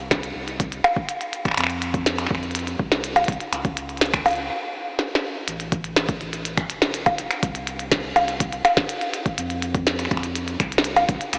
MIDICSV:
0, 0, Header, 1, 4, 480
1, 0, Start_track
1, 0, Tempo, 487805
1, 1550, Time_signature, 4, 2, 24, 8
1, 11206, End_track
2, 0, Start_track
2, 0, Title_t, "Sub bass"
2, 0, Program_c, 0, 38
2, 0, Note_on_c, 0, 36, 96
2, 318, Note_off_c, 0, 36, 0
2, 349, Note_on_c, 0, 36, 81
2, 797, Note_off_c, 0, 36, 0
2, 1549, Note_on_c, 0, 41, 99
2, 2237, Note_off_c, 0, 41, 0
2, 2270, Note_on_c, 0, 41, 77
2, 2718, Note_off_c, 0, 41, 0
2, 2749, Note_on_c, 0, 36, 87
2, 3198, Note_off_c, 0, 36, 0
2, 3230, Note_on_c, 0, 36, 91
2, 3330, Note_off_c, 0, 36, 0
2, 3469, Note_on_c, 0, 37, 97
2, 4157, Note_off_c, 0, 37, 0
2, 4190, Note_on_c, 0, 37, 79
2, 4430, Note_off_c, 0, 37, 0
2, 5390, Note_on_c, 0, 33, 99
2, 6078, Note_off_c, 0, 33, 0
2, 6109, Note_on_c, 0, 33, 79
2, 6558, Note_off_c, 0, 33, 0
2, 6589, Note_on_c, 0, 28, 90
2, 7037, Note_off_c, 0, 28, 0
2, 7069, Note_on_c, 0, 28, 88
2, 7170, Note_off_c, 0, 28, 0
2, 7309, Note_on_c, 0, 36, 100
2, 7998, Note_off_c, 0, 36, 0
2, 8030, Note_on_c, 0, 36, 80
2, 8478, Note_off_c, 0, 36, 0
2, 9229, Note_on_c, 0, 41, 102
2, 9918, Note_off_c, 0, 41, 0
2, 9950, Note_on_c, 0, 41, 80
2, 10398, Note_off_c, 0, 41, 0
2, 10430, Note_on_c, 0, 36, 89
2, 10878, Note_off_c, 0, 36, 0
2, 10910, Note_on_c, 0, 36, 90
2, 11010, Note_off_c, 0, 36, 0
2, 11150, Note_on_c, 0, 37, 101
2, 11206, Note_off_c, 0, 37, 0
2, 11206, End_track
3, 0, Start_track
3, 0, Title_t, "Percussion blips"
3, 829, Note_on_c, 9, 56, 94
3, 928, Note_off_c, 9, 56, 0
3, 3110, Note_on_c, 9, 56, 93
3, 3208, Note_off_c, 9, 56, 0
3, 4189, Note_on_c, 9, 56, 82
3, 4287, Note_off_c, 9, 56, 0
3, 6949, Note_on_c, 9, 56, 90
3, 7048, Note_off_c, 9, 56, 0
3, 8029, Note_on_c, 9, 56, 77
3, 8128, Note_off_c, 9, 56, 0
3, 8509, Note_on_c, 9, 56, 89
3, 8607, Note_off_c, 9, 56, 0
3, 10789, Note_on_c, 9, 56, 84
3, 10888, Note_off_c, 9, 56, 0
3, 11206, End_track
4, 0, Start_track
4, 0, Title_t, "Drums"
4, 109, Note_on_c, 9, 26, 74
4, 109, Note_on_c, 9, 36, 97
4, 109, Note_on_c, 9, 38, 109
4, 109, Note_on_c, 9, 42, 84
4, 208, Note_off_c, 9, 26, 0
4, 208, Note_off_c, 9, 36, 0
4, 208, Note_off_c, 9, 38, 0
4, 208, Note_off_c, 9, 42, 0
4, 230, Note_on_c, 9, 42, 37
4, 328, Note_off_c, 9, 42, 0
4, 469, Note_on_c, 9, 42, 37
4, 568, Note_off_c, 9, 42, 0
4, 589, Note_on_c, 9, 36, 103
4, 589, Note_on_c, 9, 42, 86
4, 687, Note_off_c, 9, 42, 0
4, 688, Note_off_c, 9, 36, 0
4, 709, Note_on_c, 9, 42, 36
4, 808, Note_off_c, 9, 42, 0
4, 829, Note_on_c, 9, 26, 52
4, 829, Note_on_c, 9, 42, 61
4, 928, Note_off_c, 9, 26, 0
4, 928, Note_off_c, 9, 42, 0
4, 949, Note_on_c, 9, 36, 113
4, 1048, Note_off_c, 9, 36, 0
4, 1069, Note_on_c, 9, 42, 82
4, 1168, Note_off_c, 9, 42, 0
4, 1189, Note_on_c, 9, 42, 37
4, 1287, Note_off_c, 9, 42, 0
4, 1309, Note_on_c, 9, 42, 60
4, 1407, Note_off_c, 9, 42, 0
4, 1429, Note_on_c, 9, 26, 34
4, 1429, Note_on_c, 9, 36, 97
4, 1429, Note_on_c, 9, 42, 35
4, 1459, Note_off_c, 9, 26, 0
4, 1459, Note_on_c, 9, 26, 39
4, 1489, Note_off_c, 9, 26, 0
4, 1489, Note_on_c, 9, 26, 44
4, 1519, Note_off_c, 9, 26, 0
4, 1519, Note_on_c, 9, 26, 47
4, 1527, Note_off_c, 9, 42, 0
4, 1528, Note_off_c, 9, 36, 0
4, 1549, Note_off_c, 9, 26, 0
4, 1549, Note_on_c, 9, 26, 54
4, 1549, Note_on_c, 9, 42, 90
4, 1580, Note_off_c, 9, 26, 0
4, 1580, Note_on_c, 9, 26, 60
4, 1610, Note_off_c, 9, 26, 0
4, 1610, Note_on_c, 9, 26, 62
4, 1640, Note_off_c, 9, 26, 0
4, 1640, Note_on_c, 9, 26, 68
4, 1648, Note_off_c, 9, 42, 0
4, 1669, Note_on_c, 9, 42, 37
4, 1738, Note_off_c, 9, 26, 0
4, 1768, Note_off_c, 9, 42, 0
4, 1790, Note_on_c, 9, 42, 64
4, 1888, Note_off_c, 9, 42, 0
4, 1909, Note_on_c, 9, 36, 95
4, 1910, Note_on_c, 9, 42, 36
4, 2008, Note_off_c, 9, 36, 0
4, 2008, Note_off_c, 9, 42, 0
4, 2029, Note_on_c, 9, 38, 110
4, 2029, Note_on_c, 9, 42, 85
4, 2128, Note_off_c, 9, 38, 0
4, 2128, Note_off_c, 9, 42, 0
4, 2150, Note_on_c, 9, 26, 48
4, 2150, Note_on_c, 9, 42, 38
4, 2229, Note_off_c, 9, 26, 0
4, 2229, Note_on_c, 9, 26, 40
4, 2248, Note_off_c, 9, 42, 0
4, 2269, Note_on_c, 9, 36, 104
4, 2309, Note_off_c, 9, 26, 0
4, 2309, Note_on_c, 9, 26, 33
4, 2368, Note_off_c, 9, 36, 0
4, 2389, Note_on_c, 9, 42, 17
4, 2408, Note_off_c, 9, 26, 0
4, 2469, Note_off_c, 9, 42, 0
4, 2469, Note_on_c, 9, 42, 24
4, 2509, Note_off_c, 9, 42, 0
4, 2509, Note_on_c, 9, 42, 85
4, 2549, Note_off_c, 9, 42, 0
4, 2549, Note_on_c, 9, 42, 29
4, 2629, Note_off_c, 9, 42, 0
4, 2629, Note_on_c, 9, 42, 36
4, 2728, Note_off_c, 9, 42, 0
4, 2749, Note_on_c, 9, 36, 95
4, 2848, Note_off_c, 9, 36, 0
4, 2870, Note_on_c, 9, 38, 112
4, 2870, Note_on_c, 9, 42, 39
4, 2968, Note_off_c, 9, 38, 0
4, 2968, Note_off_c, 9, 42, 0
4, 2990, Note_on_c, 9, 42, 86
4, 3088, Note_off_c, 9, 42, 0
4, 3110, Note_on_c, 9, 42, 36
4, 3190, Note_off_c, 9, 42, 0
4, 3190, Note_on_c, 9, 42, 29
4, 3229, Note_on_c, 9, 36, 94
4, 3230, Note_off_c, 9, 42, 0
4, 3230, Note_on_c, 9, 42, 62
4, 3270, Note_off_c, 9, 42, 0
4, 3270, Note_on_c, 9, 42, 24
4, 3328, Note_off_c, 9, 36, 0
4, 3350, Note_off_c, 9, 42, 0
4, 3350, Note_on_c, 9, 42, 38
4, 3448, Note_off_c, 9, 42, 0
4, 3470, Note_on_c, 9, 26, 54
4, 3470, Note_on_c, 9, 42, 94
4, 3568, Note_off_c, 9, 26, 0
4, 3568, Note_off_c, 9, 42, 0
4, 3589, Note_on_c, 9, 36, 106
4, 3590, Note_on_c, 9, 42, 39
4, 3688, Note_off_c, 9, 36, 0
4, 3688, Note_off_c, 9, 42, 0
4, 3709, Note_on_c, 9, 42, 67
4, 3808, Note_off_c, 9, 42, 0
4, 3830, Note_on_c, 9, 42, 18
4, 3910, Note_off_c, 9, 42, 0
4, 3910, Note_on_c, 9, 42, 24
4, 3949, Note_off_c, 9, 42, 0
4, 3949, Note_on_c, 9, 38, 112
4, 3949, Note_on_c, 9, 42, 87
4, 3989, Note_off_c, 9, 42, 0
4, 3989, Note_on_c, 9, 42, 30
4, 4048, Note_off_c, 9, 38, 0
4, 4069, Note_off_c, 9, 42, 0
4, 4069, Note_on_c, 9, 26, 79
4, 4069, Note_on_c, 9, 36, 101
4, 4069, Note_on_c, 9, 42, 38
4, 4168, Note_off_c, 9, 26, 0
4, 4168, Note_off_c, 9, 36, 0
4, 4168, Note_off_c, 9, 42, 0
4, 4189, Note_on_c, 9, 42, 33
4, 4213, Note_off_c, 9, 42, 0
4, 4213, Note_on_c, 9, 42, 28
4, 4237, Note_off_c, 9, 42, 0
4, 4237, Note_on_c, 9, 42, 23
4, 4261, Note_off_c, 9, 42, 0
4, 4261, Note_on_c, 9, 42, 19
4, 4285, Note_off_c, 9, 42, 0
4, 4285, Note_on_c, 9, 42, 15
4, 4383, Note_off_c, 9, 42, 0
4, 4909, Note_on_c, 9, 38, 63
4, 5007, Note_off_c, 9, 38, 0
4, 5069, Note_on_c, 9, 38, 77
4, 5167, Note_off_c, 9, 38, 0
4, 5389, Note_on_c, 9, 42, 96
4, 5487, Note_off_c, 9, 42, 0
4, 5509, Note_on_c, 9, 42, 41
4, 5608, Note_off_c, 9, 42, 0
4, 5629, Note_on_c, 9, 42, 67
4, 5630, Note_on_c, 9, 36, 104
4, 5728, Note_off_c, 9, 36, 0
4, 5728, Note_off_c, 9, 42, 0
4, 5749, Note_on_c, 9, 42, 41
4, 5847, Note_off_c, 9, 42, 0
4, 5869, Note_on_c, 9, 26, 52
4, 5869, Note_on_c, 9, 38, 114
4, 5869, Note_on_c, 9, 42, 93
4, 5967, Note_off_c, 9, 26, 0
4, 5967, Note_off_c, 9, 38, 0
4, 5967, Note_off_c, 9, 42, 0
4, 5989, Note_on_c, 9, 42, 40
4, 5990, Note_on_c, 9, 36, 118
4, 6087, Note_off_c, 9, 42, 0
4, 6088, Note_off_c, 9, 36, 0
4, 6109, Note_on_c, 9, 42, 39
4, 6207, Note_off_c, 9, 42, 0
4, 6229, Note_on_c, 9, 42, 42
4, 6328, Note_off_c, 9, 42, 0
4, 6349, Note_on_c, 9, 42, 95
4, 6448, Note_off_c, 9, 42, 0
4, 6470, Note_on_c, 9, 26, 83
4, 6470, Note_on_c, 9, 36, 105
4, 6470, Note_on_c, 9, 42, 40
4, 6568, Note_off_c, 9, 26, 0
4, 6568, Note_off_c, 9, 36, 0
4, 6568, Note_off_c, 9, 42, 0
4, 6590, Note_on_c, 9, 42, 68
4, 6688, Note_off_c, 9, 42, 0
4, 6709, Note_on_c, 9, 38, 122
4, 6709, Note_on_c, 9, 42, 42
4, 6808, Note_off_c, 9, 38, 0
4, 6808, Note_off_c, 9, 42, 0
4, 6829, Note_on_c, 9, 42, 92
4, 6927, Note_off_c, 9, 42, 0
4, 6949, Note_on_c, 9, 42, 40
4, 6950, Note_on_c, 9, 36, 107
4, 7048, Note_off_c, 9, 36, 0
4, 7048, Note_off_c, 9, 42, 0
4, 7069, Note_on_c, 9, 42, 66
4, 7168, Note_off_c, 9, 42, 0
4, 7189, Note_on_c, 9, 26, 53
4, 7189, Note_on_c, 9, 42, 41
4, 7287, Note_off_c, 9, 26, 0
4, 7287, Note_off_c, 9, 42, 0
4, 7309, Note_on_c, 9, 42, 98
4, 7310, Note_on_c, 9, 36, 126
4, 7408, Note_off_c, 9, 36, 0
4, 7408, Note_off_c, 9, 42, 0
4, 7429, Note_on_c, 9, 42, 41
4, 7528, Note_off_c, 9, 42, 0
4, 7549, Note_on_c, 9, 42, 68
4, 7648, Note_off_c, 9, 42, 0
4, 7669, Note_on_c, 9, 42, 40
4, 7768, Note_off_c, 9, 42, 0
4, 7789, Note_on_c, 9, 26, 81
4, 7789, Note_on_c, 9, 38, 119
4, 7789, Note_on_c, 9, 42, 97
4, 7790, Note_on_c, 9, 36, 109
4, 7887, Note_off_c, 9, 26, 0
4, 7887, Note_off_c, 9, 38, 0
4, 7887, Note_off_c, 9, 42, 0
4, 7888, Note_off_c, 9, 36, 0
4, 8029, Note_on_c, 9, 42, 38
4, 8128, Note_off_c, 9, 42, 0
4, 8149, Note_on_c, 9, 42, 42
4, 8248, Note_off_c, 9, 42, 0
4, 8269, Note_on_c, 9, 42, 96
4, 8270, Note_on_c, 9, 36, 112
4, 8367, Note_off_c, 9, 42, 0
4, 8368, Note_off_c, 9, 36, 0
4, 8389, Note_on_c, 9, 42, 42
4, 8487, Note_off_c, 9, 42, 0
4, 8509, Note_on_c, 9, 26, 55
4, 8509, Note_on_c, 9, 42, 68
4, 8607, Note_off_c, 9, 26, 0
4, 8607, Note_off_c, 9, 42, 0
4, 8629, Note_on_c, 9, 38, 124
4, 8629, Note_on_c, 9, 42, 41
4, 8630, Note_on_c, 9, 36, 121
4, 8728, Note_off_c, 9, 36, 0
4, 8728, Note_off_c, 9, 38, 0
4, 8728, Note_off_c, 9, 42, 0
4, 8750, Note_on_c, 9, 42, 96
4, 8848, Note_off_c, 9, 42, 0
4, 8869, Note_on_c, 9, 42, 42
4, 8968, Note_off_c, 9, 42, 0
4, 8990, Note_on_c, 9, 42, 68
4, 9088, Note_off_c, 9, 42, 0
4, 9110, Note_on_c, 9, 36, 106
4, 9110, Note_on_c, 9, 42, 40
4, 9208, Note_off_c, 9, 36, 0
4, 9208, Note_off_c, 9, 42, 0
4, 9230, Note_on_c, 9, 42, 93
4, 9328, Note_off_c, 9, 42, 0
4, 9349, Note_on_c, 9, 42, 41
4, 9448, Note_off_c, 9, 42, 0
4, 9470, Note_on_c, 9, 42, 68
4, 9568, Note_off_c, 9, 42, 0
4, 9590, Note_on_c, 9, 36, 110
4, 9590, Note_on_c, 9, 42, 40
4, 9688, Note_off_c, 9, 36, 0
4, 9688, Note_off_c, 9, 42, 0
4, 9709, Note_on_c, 9, 38, 121
4, 9709, Note_on_c, 9, 42, 91
4, 9808, Note_off_c, 9, 38, 0
4, 9808, Note_off_c, 9, 42, 0
4, 9830, Note_on_c, 9, 26, 23
4, 9830, Note_on_c, 9, 42, 39
4, 9890, Note_off_c, 9, 26, 0
4, 9890, Note_on_c, 9, 26, 30
4, 9928, Note_off_c, 9, 42, 0
4, 9950, Note_off_c, 9, 26, 0
4, 9950, Note_on_c, 9, 26, 35
4, 9950, Note_on_c, 9, 36, 119
4, 9950, Note_on_c, 9, 42, 37
4, 10010, Note_off_c, 9, 26, 0
4, 10010, Note_on_c, 9, 26, 42
4, 10048, Note_off_c, 9, 36, 0
4, 10048, Note_off_c, 9, 42, 0
4, 10070, Note_on_c, 9, 42, 41
4, 10108, Note_off_c, 9, 26, 0
4, 10168, Note_off_c, 9, 42, 0
4, 10189, Note_on_c, 9, 42, 97
4, 10288, Note_off_c, 9, 42, 0
4, 10310, Note_on_c, 9, 42, 41
4, 10408, Note_off_c, 9, 42, 0
4, 10430, Note_on_c, 9, 26, 80
4, 10430, Note_on_c, 9, 36, 106
4, 10430, Note_on_c, 9, 42, 69
4, 10528, Note_off_c, 9, 26, 0
4, 10528, Note_off_c, 9, 36, 0
4, 10528, Note_off_c, 9, 42, 0
4, 10549, Note_on_c, 9, 42, 43
4, 10609, Note_on_c, 9, 38, 127
4, 10648, Note_off_c, 9, 42, 0
4, 10670, Note_on_c, 9, 42, 93
4, 10707, Note_off_c, 9, 38, 0
4, 10768, Note_off_c, 9, 42, 0
4, 10789, Note_on_c, 9, 42, 41
4, 10888, Note_off_c, 9, 42, 0
4, 10909, Note_on_c, 9, 42, 67
4, 10910, Note_on_c, 9, 36, 110
4, 11008, Note_off_c, 9, 36, 0
4, 11008, Note_off_c, 9, 42, 0
4, 11029, Note_on_c, 9, 42, 42
4, 11128, Note_off_c, 9, 42, 0
4, 11149, Note_on_c, 9, 26, 50
4, 11149, Note_on_c, 9, 42, 93
4, 11206, Note_off_c, 9, 26, 0
4, 11206, Note_off_c, 9, 42, 0
4, 11206, End_track
0, 0, End_of_file